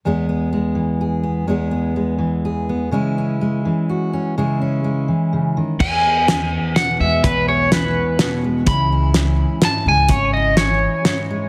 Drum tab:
CC |------|------|------|------|
HH |------|------|------|------|
SD |------|------|------|------|
BD |------|------|------|------|

CC |x-----|------|------|------|
HH |--x-x-|x-x-x-|x-x-x-|x-x-x-|
SD |--o-o-|--o-o-|--o-o-|--o-o-|
BD |o-----|o-----|o-----|o-----|